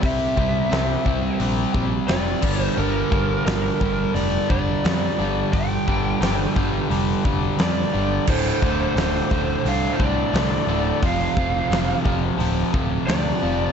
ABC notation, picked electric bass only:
X:1
M:4/4
L:1/8
Q:1/4=87
K:Gdor
V:1 name="Picked electric bass" clef=bass
C,, C,, C,, C,, B,,, B,,, F,,, G,,, | G,,, G,,, G,,, G,,, F,,, F,,, F,, G,,, | G,,, G,,, G,,, G,,, F,,, F,,, F,, G,,, | D,,, D,,, D,,, D,,, C,, C,, C,, D,,, |
F,,, F,,, F,,, F,,, D,,, D,,, D,, F,,, |]